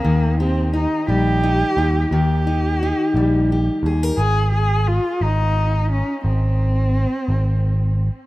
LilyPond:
<<
  \new Staff \with { instrumentName = "Cello" } { \time 6/8 \key aes \major \tempo 4. = 58 bes8 c'8 ees'8 g'4. | g'2 r4 | aes'8 aes'8 f'8 ees'4 des'8 | c'2~ c'8 r8 | }
  \new Staff \with { instrumentName = "Steel-string acoustic guitar" } { \time 6/8 \key aes \major << { ees'8 g'8 ees'4 ees'8 ees'8 | r8 ees'8 ees'4 g'8 aes'16 bes'16 | r2. | r2. | } \\ { ees4. g4. | ees4. g4. | r2. | r2. | } >> }
  \new Staff \with { instrumentName = "Picked electric bass" } { \clef bass \time 6/8 \key aes \major ees,4. bes,,4 ees,8 | ees,4. bes,,4 ees,8 | aes,,4. aes,,4. | aes,,4. aes,,4. | }
>>